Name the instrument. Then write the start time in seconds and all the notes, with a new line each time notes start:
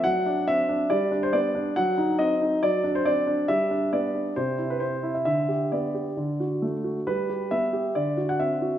grand piano
0.04 F#3 F#5
0.26 D4
0.48 C4 E5
0.69 D4
0.90 G3 D5
1.11 D4
1.23 C5
1.33 B3 D5
1.55 D4
1.76 F#3 F#5
1.98 D#4
2.19 C4 D#5
2.42 D#4
2.63 F#3 D5
2.84 D4
2.95 C5
3.06 C4 D5
3.27 D4
3.48 G3 E5
3.71 D4
3.93 B3 D5
4.15 D4
4.36 C3 C5
4.58 E4
4.70 B4
4.80 C4 C5
5.03 E4
5.15 E5
5.25 D3 E5
5.49 G4
5.72 B3 D5
5.95 G4
6.17 D3
6.40 F#4
6.62 A3
6.84 F#4
7.07 G3 B4
7.30 G4
7.51 B3 E5
7.73 G4
7.95 D3 D5
8.17 F#4
8.29 F#5
8.40 C4 E5
8.62 F#4